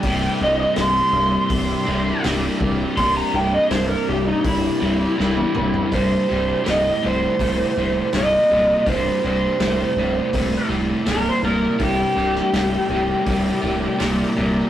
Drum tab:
HH |o---o---o---o---|o---o---o-------|o---o---o---o---|o---o---o---o---|
SD |----o-------o---|----o-------o---|----o-------o---|----o-------o---|
T1 |----------------|-------------o--|----------------|----------------|
T2 |----------------|--------------o-|----------------|----------------|
FT |----------------|---------------o|----------------|----------------|
BD |o-------o-----o-|o-------o-------|o-------o-------|o-------o-------|

HH |o---o---o---o---|
SD |---oo-------o---|
T1 |----------------|
T2 |----------------|
FT |----------------|
BD |o-------o-------|